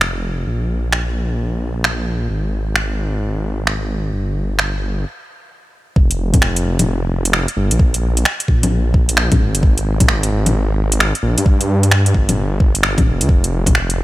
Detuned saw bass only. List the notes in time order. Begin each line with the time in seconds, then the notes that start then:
Already playing: F1
0.47 A#1
2.30 G#1
4.13 G1
5.96 F1
6.65 F1
7.57 G1
7.72 A#1
8.48 A#1
9.40 G#1
9.55 F1
9.63 G#1
10.32 G#1
11.23 A#1
11.38 G2
12.15 G1
13.06 F1
13.21 D2
13.29 F1
13.98 F1